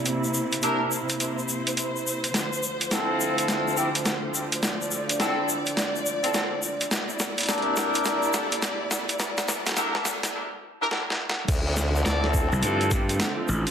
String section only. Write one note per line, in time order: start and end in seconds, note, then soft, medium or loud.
0.00 2.30 C3 medium
0.00 2.30 A#3 medium
0.00 2.30 E4 medium
0.06 4.59 C5 medium
2.35 6.88 D2 medium
2.35 6.88 D3 medium
2.35 6.88 F3 medium
4.63 6.89 D5 medium
6.92 10.31 C3 medium
6.92 10.31 A#3 medium
6.92 10.31 E4 medium
6.92 10.31 D5 medium
11.48 13.71 D3 medium
11.48 13.71 F3 medium
11.48 13.71 A3 medium
11.48 13.71 C4 medium